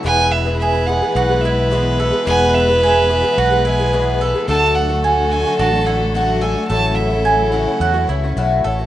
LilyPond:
<<
  \new Staff \with { instrumentName = "Fiddle" } { \time 4/4 \key e \mixolydian \tempo 4 = 108 gis''8 e''8 e''8 fis''8 fis''8 e''4 r8 | gis''8 e''8 e''8 e''8 fis''8 gis''4 r8 | a''8 fis''8 fis''8 gis''8 a''8 fis''8 fis''8 gis''8 | a''8 e''4 fis''4. r4 | }
  \new Staff \with { instrumentName = "Fiddle" } { \time 4/4 \key e \mixolydian b'1~ | b'1 | a'1 | a'2.~ a'8 r8 | }
  \new Staff \with { instrumentName = "Mandolin" } { \time 4/4 \key e \mixolydian b'4 gis'4 fis'8 e'4 a'8 | b'4 gis'4 fis'8 e'4 a'8 | a'4 gis''4 fis'8 e'4 a'8 | a'4 gis''4 fis'8 e'4 a'8 | }
  \new Staff \with { instrumentName = "Twelve-string acoustic guitar" } { \time 4/4 \key e \mixolydian <e, b, e gis b gis'>8. <e gis b gis'>8. <e gis b gis'>16 <e gis b gis'>8 <e gis b gis'>16 <e gis b gis'>8 <e, b, e gis b gis'>8 <e gis b gis'>16 <e gis b gis'>16 | <e, b, e gis b gis'>8. <e gis b gis'>8. <e gis b gis'>16 <e gis b gis'>8 <e gis b gis'>16 <e gis b gis'>16 <e gis b gis'>16 <e, b, e gis b gis'>8 <e gis b gis'>16 <e gis b gis'>16 | <d a d' fis'>8. <a d' fis'>8. <d a d' fis'>16 <a d' fis'>8 <a d' fis'>16 <d a d' fis'>8 <d a d' fis'>8 <d a d' fis'>16 <a d' fis'>16 | <a, e a cis' fis'>8. <a cis' fis'>8. <e a cis' fis'>16 <a cis' fis'>8 <a cis' fis'>16 <e a cis' fis'>16 <a cis' fis'>16 <a, e a cis' fis'>8 <e a cis' fis'>16 <a cis' fis'>16 | }
  \new Staff \with { instrumentName = "String section" } { \clef bass \time 4/4 \key e \mixolydian << { <b, e'>1~ | <b, e'>1 | <d fis'>1 | <cis e'>1 | } \\ { <e gis>1~ | <e gis>1 | <fis a>1~ | <fis a>1 | } >> }
  \new Staff \with { instrumentName = "Fingered electric bass" } { \clef bass \time 4/4 \key e \mixolydian e,,2 b,,2 | e,,2 b,,2 | d,2 a,,2 | a,,2 e,8 cis,8 b,,8 a,,8 | }
>>